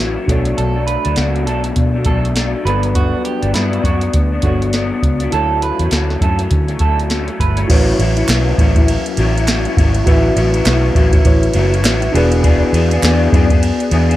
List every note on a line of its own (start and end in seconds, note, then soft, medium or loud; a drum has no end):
0.00 0.16 A1 medium
0.00 0.16 A2 medium
0.00 0.16 F#3 medium
0.00 0.15 C#4 medium
0.00 0.14 E4 medium
0.00 0.23 E4 medium
0.00 0.24 F#4 medium
0.00 0.25 B4 medium
0.00 0.26 C#5 medium
0.16 0.27 F#3 soft
0.16 0.28 C#4 soft
0.16 0.28 E4 soft
0.26 0.52 B1 loud
0.26 0.75 B2 medium
0.26 0.76 F#3 medium
0.26 0.75 A3 medium
0.26 2.60 D4 medium
0.26 0.74 D4 medium
0.26 2.61 F#4 medium
0.26 2.62 A4 medium
0.26 kick medium
0.26 closed hi-hat medium
0.31 2.63 C#5 medium
0.45 closed hi-hat soft
0.57 0.96 B1 medium
0.57 0.86 A4 medium
0.57 closed hi-hat medium
0.75 1.06 F#3 soft
0.75 1.05 A3 soft
0.75 1.03 D4 medium
0.87 1.15 B4 medium
0.87 closed hi-hat medium
1.05 1.15 D2 medium
1.05 1.16 F#3 soft
1.05 1.16 A3 soft
1.05 1.17 D4 medium
1.05 closed hi-hat soft
1.16 1.47 C#2 medium
1.16 1.45 B2 medium
1.16 1.46 F#3 medium
1.16 1.47 A3 medium
1.16 1.47 D4 medium
1.16 1.45 F#4 medium
1.16 snare loud
1.16 closed hi-hat medium
1.36 closed hi-hat soft
1.46 1.70 B1 medium
1.46 1.94 B2 medium
1.46 1.95 F#3 medium
1.46 1.94 A3 medium
1.46 1.93 D4 medium
1.46 1.64 A4 medium
1.46 closed hi-hat medium
1.64 closed hi-hat soft
1.76 2.07 B2 medium
1.76 kick medium
1.76 closed hi-hat medium
1.94 2.06 F#3 soft
1.94 2.06 A3 soft
1.94 2.06 D4 soft
2.05 2.53 B1 medium
2.05 2.34 B2 medium
2.05 2.35 F#3 medium
2.05 2.35 A3 medium
2.05 2.36 D4 medium
2.05 2.23 A4 medium
2.05 kick medium
2.05 closed hi-hat medium
2.25 closed hi-hat soft
2.35 2.53 B2 medium
2.35 2.54 F#3 medium
2.35 2.54 A3 medium
2.35 2.52 D4 medium
2.35 snare medium
2.35 closed hi-hat medium
2.53 2.65 F#3 soft
2.53 2.66 A3 soft
2.53 2.65 D4 soft
2.63 3.13 G1 loud
2.63 3.43 G2 medium
2.63 3.44 F#3 medium
2.63 3.42 B3 medium
2.63 4.39 D4 medium
2.63 4.40 F#4 medium
2.63 4.41 A4 medium
2.63 2.82 B4 medium
2.63 closed hi-hat medium
2.67 3.42 D4 medium
2.67 4.41 B4 medium
2.83 closed hi-hat soft
2.95 3.23 F#4 medium
2.95 kick medium
2.95 closed hi-hat medium
3.25 3.53 G4 medium
3.25 closed hi-hat medium
3.42 3.52 G1 medium
3.42 3.54 F#3 soft
3.42 3.54 B3 soft
3.42 3.54 D4 medium
3.42 closed hi-hat soft
3.54 3.83 G2 medium
3.54 3.78 G2 medium
3.54 3.84 F#3 medium
3.54 3.84 B3 medium
3.54 3.85 D4 medium
3.54 3.82 E4 medium
3.54 snare medium
3.54 closed hi-hat medium
3.73 closed hi-hat soft
3.83 4.08 F#2 medium
3.83 4.32 G2 medium
3.83 4.32 F#3 medium
3.83 4.32 B3 medium
3.83 4.31 D4 medium
3.83 4.01 F#4 medium
3.83 kick medium
3.83 closed hi-hat medium
4.01 closed hi-hat soft
4.14 4.38 D2 medium
4.14 kick medium
4.14 closed hi-hat medium
4.32 4.44 F#3 soft
4.32 4.44 B3 soft
4.32 4.44 D4 soft
4.42 4.91 G1 medium
4.42 4.73 G2 medium
4.42 4.73 F#3 medium
4.42 4.73 B3 medium
4.42 5.32 D4 soft
4.42 4.60 F#4 medium
4.42 5.31 F#4 soft
4.42 5.33 A4 soft
4.42 5.33 C#5 soft
4.42 kick medium
4.42 closed hi-hat medium
4.46 4.74 D4 medium
4.62 closed hi-hat soft
4.73 4.91 G2 medium
4.73 4.92 F#3 medium
4.73 4.91 B3 medium
4.73 4.90 D4 medium
4.73 snare medium
4.73 closed hi-hat medium
4.92 5.21 F#3 soft
4.92 5.21 B3 soft
4.92 5.20 D4 soft
5.03 5.26 C#2 medium
5.03 kick medium
5.03 closed hi-hat medium
5.20 5.32 F#3 soft
5.20 5.33 B3 soft
5.20 5.33 D4 medium
5.20 closed hi-hat soft
5.31 5.70 D2 medium
5.31 5.80 D3 medium
5.31 5.80 F#3 medium
5.31 5.80 A3 medium
5.31 5.79 C#4 medium
5.31 7.65 E4 medium
5.31 7.66 F#4 medium
5.31 5.61 A4 medium
5.31 7.66 A4 medium
5.31 closed hi-hat medium
5.36 7.67 C#5 medium
5.62 5.91 B4 medium
5.62 closed hi-hat medium
5.79 5.89 E2 medium
5.79 5.91 F#3 soft
5.79 5.91 A3 soft
5.79 5.92 C#4 medium
5.79 closed hi-hat soft
5.91 6.15 D2 medium
5.91 6.20 D3 medium
5.91 6.21 F#3 medium
5.91 6.22 A3 medium
5.91 6.22 C#4 medium
5.91 6.20 F#4 medium
5.91 snare loud
5.91 closed hi-hat medium
6.10 snare soft
6.21 6.45 F#2 medium
6.21 6.39 D3 medium
6.21 6.40 F#3 medium
6.21 6.39 A3 medium
6.21 6.38 C#4 medium
6.21 6.39 A4 medium
6.21 kick medium
6.21 closed hi-hat medium
6.39 6.69 F#3 soft
6.39 6.68 A3 soft
6.39 6.67 C#4 medium
6.39 closed hi-hat soft
6.51 6.75 D3 loud
6.51 kick loud
6.51 closed hi-hat medium
6.68 6.80 F#3 soft
6.68 6.80 A3 soft
6.68 6.80 C#4 medium
6.68 closed hi-hat soft
6.79 7.28 D2 medium
6.79 7.08 D3 medium
6.79 7.09 F#3 medium
6.79 7.09 A3 medium
6.79 7.10 C#4 medium
6.79 6.98 A4 medium
6.79 kick medium
6.79 closed hi-hat medium
7.00 closed hi-hat soft
7.10 7.28 D3 medium
7.10 7.28 F#3 medium
7.10 7.28 A3 medium
7.10 7.27 C#4 medium
7.10 snare loud
7.10 closed hi-hat medium
7.28 7.58 F#3 soft
7.28 7.57 A3 soft
7.28 7.56 C#4 medium
7.28 closed hi-hat soft
7.40 7.64 G1 medium
7.40 7.57 B4 medium
7.40 kick medium
7.40 closed hi-hat medium
7.57 7.68 F#3 soft
7.57 7.70 A3 soft
7.57 7.69 C#4 medium
7.57 closed hi-hat soft
7.68 7.93 A1 loud
7.68 7.98 A2 medium
7.68 7.99 F#3 medium
7.68 7.99 C#4 loud
7.68 10.02 E4 medium
7.68 7.99 E4 medium
7.68 10.02 F#4 medium
7.68 10.03 B4 medium
7.68 kick loud
7.68 crash loud
7.68 ride medium
7.72 10.04 C#5 medium
7.99 8.23 A1 loud
7.99 8.17 A2 medium
7.99 8.17 F#3 medium
7.99 8.16 C#4 medium
7.99 8.15 E4 medium
7.99 ride medium
8.16 8.28 F#3 soft
8.16 8.28 C#4 medium
8.16 8.29 E4 medium
8.16 ride soft
8.28 8.52 B1 loud
8.28 8.57 A2 medium
8.28 8.58 F#3 loud
8.28 8.59 C#4 medium
8.28 8.59 E4 loud
8.28 snare loud
8.28 clap loud
8.28 ride medium
8.58 8.96 A1 medium
8.58 8.76 A2 medium
8.58 8.77 F#3 medium
8.58 8.76 C#4 medium
8.58 8.75 E4 medium
8.58 kick medium
8.58 ride medium
8.76 9.17 F#3 medium
8.76 9.18 C#4 medium
8.76 9.18 E4 medium
8.76 kick loud
8.76 ride soft
8.88 ride medium
9.06 ride soft
9.17 9.65 A1 loud
9.17 9.35 A2 medium
9.17 9.36 F#3 medium
9.17 9.35 C#4 medium
9.17 9.34 E4 medium
9.17 ride medium
9.35 9.47 F#3 medium
9.35 9.47 C#4 medium
9.35 9.47 E4 medium
9.35 ride soft
9.47 9.65 A2 medium
9.47 9.66 F#3 medium
9.47 9.65 C#4 medium
9.47 9.64 E4 loud
9.47 snare loud
9.47 clap loud
9.47 ride medium
9.65 9.77 F#3 soft
9.65 9.78 C#4 medium
9.65 9.77 E4 medium
9.65 ride soft
9.77 10.01 G#1 loud
9.77 10.05 A2 medium
9.77 10.05 F#3 medium
9.77 10.06 C#4 medium
9.77 10.06 E4 medium
9.77 kick loud
9.77 ride medium
9.94 ride soft
10.05 10.30 A1 loud
10.05 10.34 A2 medium
10.05 10.35 F#3 medium
10.05 10.36 C#4 medium
10.05 11.22 E4 medium
10.05 10.37 E4 medium
10.05 11.23 F#4 medium
10.05 11.23 B4 medium
10.05 kick loud
10.05 ride medium
10.09 11.24 E5 medium
10.35 10.60 A1 medium
10.35 10.54 A2 medium
10.35 10.54 F#3 medium
10.35 10.54 C#4 medium
10.35 10.53 E4 medium
10.35 ride medium
10.54 10.65 F#3 soft
10.54 10.65 C#4 medium
10.54 10.66 E4 medium
10.54 ride soft
10.65 10.90 B1 loud
10.65 10.93 A2 loud
10.65 10.94 F#3 loud
10.65 10.95 C#4 loud
10.65 10.95 E4 loud
10.65 snare loud
10.65 clap loud
10.65 ride medium
10.94 11.19 A1 medium
10.94 11.13 A2 medium
10.94 11.13 F#3 medium
10.94 11.12 C#4 medium
10.94 11.11 E4 medium
10.94 kick medium
10.94 ride medium
11.13 11.54 F#3 medium
11.13 11.54 C#4 medium
11.13 11.55 E4 medium
11.13 kick medium
11.13 ride soft
11.24 11.49 A1 medium
11.24 12.14 E4 medium
11.24 12.13 F#4 medium
11.24 12.15 B4 medium
11.24 12.15 C#5 medium
11.24 kick loud
11.24 ride medium
11.43 ride soft
11.53 11.84 F#1 medium
11.53 11.72 A2 medium
11.53 11.73 F#3 medium
11.53 11.71 C#4 medium
11.53 11.70 E4 medium
11.53 ride medium
11.72 11.83 F#3 medium
11.72 11.83 C#4 medium
11.72 11.84 E4 medium
11.72 ride soft
11.84 12.08 A1 loud
11.84 12.02 A2 medium
11.84 12.02 F#3 loud
11.84 12.01 C#4 loud
11.84 12.00 E4 medium
11.84 snare loud
11.84 clap medium
11.84 ride medium
12.01 12.12 F#3 soft
12.01 12.13 C#4 medium
12.01 12.13 E4 medium
12.01 ride soft
12.12 12.62 E1 loud
12.12 12.42 E3 medium
12.12 12.43 B3 medium
12.12 14.16 D4 medium
12.12 12.43 D4 medium
12.12 14.16 F#4 medium
12.12 12.43 G#4 medium
12.12 14.16 G#4 medium
12.12 ride medium
12.18 14.16 B4 medium
12.32 ride soft
12.43 12.72 E3 medium
12.43 12.73 B3 medium
12.43 12.73 D4 medium
12.43 12.74 G#4 medium
12.43 kick loud
12.43 ride medium
12.73 12.97 E2 loud
12.73 12.91 E3 medium
12.73 12.91 B3 medium
12.73 12.91 D4 medium
12.73 12.90 G#4 medium
12.73 ride medium
12.91 13.02 B3 soft
12.91 13.03 D4 medium
12.91 13.03 G#4 medium
12.91 ride soft
13.03 13.27 E2 loud
13.03 13.31 E3 loud
13.03 13.32 B3 loud
13.03 13.33 D4 loud
13.03 13.33 G#4 loud
13.03 snare loud
13.03 clap loud
13.03 ride medium
13.32 13.71 F#2 medium
13.32 13.50 E3 medium
13.32 13.51 B3 medium
13.32 13.50 D4 medium
13.32 13.49 G#4 medium
13.32 kick loud
13.32 ride medium
13.50 13.91 B3 medium
13.50 13.91 D4 medium
13.50 13.92 G#4 medium
13.50 kick medium
13.50 ride soft
13.63 ride medium
13.80 ride soft
13.91 14.16 E2 loud
13.91 14.09 E3 medium
13.91 14.10 B3 medium
13.91 14.09 D4 medium
13.91 14.08 G#4 medium
13.91 ride medium
14.09 14.16 B3 medium
14.09 14.16 D4 medium
14.09 14.16 G#4 medium
14.09 ride soft